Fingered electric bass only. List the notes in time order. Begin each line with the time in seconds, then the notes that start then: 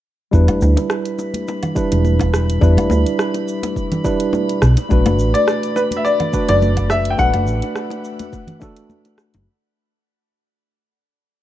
0.33 E2
0.49 E1
0.62 D2
1.92 E1
2.62 E2
2.78 E1
2.91 D2
4.62 B1
4.91 B1
5.07 F#1
5.20 A1
6.50 F#1
7.19 B1
7.35 F#1
7.48 A1
9.35 F#1